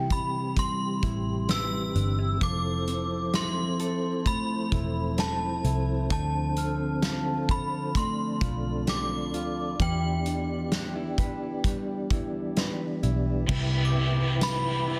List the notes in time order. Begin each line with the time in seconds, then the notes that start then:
Already playing: C2 C3 E3 G3 C4 E4 G4 B4 G5
0.10 B5, kick, closed hi-hat
0.57 G3 C6, kick, closed hi-hat
1.03 A1 E4, kick, closed hi-hat
1.49 B4 E6, snare, closed hi-hat
1.95 G1 D4, closed hi-hat
2.19 E4
2.41 F1 F3 E4 A4 C5 D6, kick, closed hi-hat
2.87 C4, closed hi-hat
3.34 E4 C6, snare, closed hi-hat
3.79 A4, closed hi-hat
4.26 A3 B5, kick, closed hi-hat
4.72 E1 E4, kick, closed hi-hat
5.18 A4 A5, snare, closed hi-hat
5.64 C2 E4, closed hi-hat
6.10 D2 D3 F3 D4 A4 A5, kick, closed hi-hat
6.57 C4 F6, closed hi-hat
7.02 F4, snare, closed hi-hat
7.49 A4 B5, kick, closed hi-hat
7.95 A3 D5 C6, kick, closed hi-hat
8.41 B1 F4, kick, closed hi-hat
8.87 G4 D6, snare, closed hi-hat
9.11 A4
9.34 D2 F4, closed hi-hat
9.79 E2 E3 B3 G4 B4 G5, kick, closed hi-hat
10.26 D4, closed hi-hat
10.72 D4, snare, closed hi-hat
10.95 E4
11.18 B4, kick, closed hi-hat
11.64 G3, kick, closed hi-hat
12.10 D2 E4, kick, closed hi-hat
12.57 B4, snare, closed hi-hat
13.03 B1 E4, closed hi-hat
13.47 C2 C3 E3 G3 E4 B4 E5 G5, kick, crash
13.51 B3 E4
13.85 D6
13.95 E4
14.41 B4 B5, snare, ride, tambourine
14.88 E4